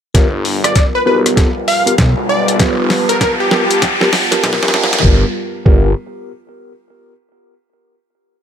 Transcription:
0.14 0.74 G1 medium
0.14 5.00 G3 medium
0.14 5.00 B3 medium
0.14 0.26 B3 medium
0.14 5.00 F4 medium
0.14 0.26 F4 medium
0.14 0.26 G4 medium
0.14 2.57 A#4 medium
0.14 0.26 A#4 loud
0.14 kick medium
0.14 snare soft
0.14 closed hi-hat medium
0.14 riser medium
0.45 open hi-hat medium
0.64 0.86 D5 medium
0.64 cross-stick medium
0.64 closed hi-hat medium
0.76 kick medium
0.76 snare medium
0.76 closed hi-hat medium
0.95 1.02 B4 medium
1.06 1.35 B1 medium
1.06 1.34 B3 medium
1.06 1.34 F4 medium
1.06 1.34 G4 medium
1.06 1.34 A#4 loud
1.06 1.19 B4 medium
1.26 cross-stick soft
1.26 closed hi-hat medium
1.36 1.48 B3 loud
1.36 1.48 F4 medium
1.36 1.48 G4 medium
1.36 1.48 A4 loud
1.36 kick medium
1.36 snare medium
1.36 closed hi-hat medium
1.68 1.95 F5 loud
1.68 open hi-hat medium
1.86 1.94 B3 medium
1.86 1.94 F4 medium
1.86 1.94 G4 medium
1.86 1.94 A#4 loud
1.86 closed hi-hat medium
1.98 2.15 B1 loud
1.98 kick medium
1.98 snare medium
1.98 closed hi-hat medium
2.17 2.57 B1 loud
2.29 2.56 D5 medium
2.48 closed hi-hat medium
2.59 2.88 F1 medium
2.59 3.49 B3 medium
2.59 3.49 F4 medium
2.59 3.49 G4 medium
2.59 3.49 B4 medium
2.59 5.02 A5 medium
2.59 kick loud
2.59 snare medium
2.59 closed hi-hat medium
2.90 snare medium
2.90 open hi-hat medium
3.09 3.17 A#4 medium
3.09 closed hi-hat medium
3.21 3.33 A#4 medium
3.21 kick loud
3.21 snare medium
3.21 closed hi-hat medium
3.40 4.24 G4 medium
3.51 3.63 B3 medium
3.51 3.63 F4 medium
3.51 3.63 G4 medium
3.51 3.63 A#4 medium
3.51 snare medium
3.71 closed hi-hat medium
3.82 kick loud
3.82 snare medium
3.82 closed hi-hat medium
4.01 4.08 B3 medium
4.01 4.08 F4 medium
4.01 4.08 G4 medium
4.01 4.08 A#4 medium
4.01 snare medium
4.13 snare loud
4.13 open hi-hat medium
4.31 5.02 B3 loud
4.31 5.02 F4 medium
4.31 5.02 G4 medium
4.31 5.02 A#4 loud
4.31 snare medium
4.31 closed hi-hat medium
4.43 4.60 B1 loud
4.43 kick loud
4.43 snare loud
4.43 closed hi-hat medium
4.53 snare medium
4.62 5.03 F1 loud
4.62 snare medium
4.68 snare medium
4.74 snare loud
4.84 snare medium
4.93 snare medium
4.93 closed hi-hat medium
4.99 snare loud
5.04 5.25 G1 loud
5.04 5.33 G3 medium
5.04 5.25 B3 medium
5.04 5.33 F4 medium
5.04 5.25 F4 medium
5.04 5.25 G4 medium
5.04 5.33 A#4 medium
5.04 5.25 A#4 loud
5.04 5.33 B4 medium
5.04 kick loud
5.66 5.94 G1 medium
5.66 5.90 B3 medium
5.66 5.90 F4 medium
5.66 5.90 G4 medium
5.66 5.90 A#4 loud
5.66 kick loud

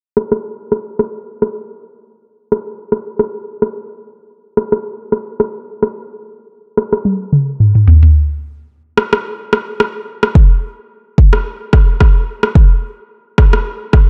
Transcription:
0.17 cross-stick medium
0.32 cross-stick medium
0.72 cross-stick medium
0.99 cross-stick medium
1.42 cross-stick medium
2.52 cross-stick medium
2.92 cross-stick medium
3.19 cross-stick medium
3.62 cross-stick medium
4.57 cross-stick medium
4.72 cross-stick medium
5.12 cross-stick medium
5.40 cross-stick medium
5.83 cross-stick medium
6.77 cross-stick medium
6.93 cross-stick medium
7.05 high tom medium
7.33 mid tom medium
7.60 mid tom medium
7.75 mid tom medium
7.88 floor tom medium
8.03 floor tom medium
8.97 cross-stick medium
9.13 cross-stick medium
9.53 cross-stick medium
9.80 cross-stick medium
10.23 cross-stick medium
10.35 kick loud
11.18 kick medium
11.33 cross-stick medium
11.73 kick medium
11.73 cross-stick medium
12.00 kick medium
12.00 cross-stick medium
12.43 cross-stick medium
12.55 kick loud
13.38 kick medium
13.38 cross-stick medium
13.53 cross-stick medium
13.93 kick medium
13.93 cross-stick medium

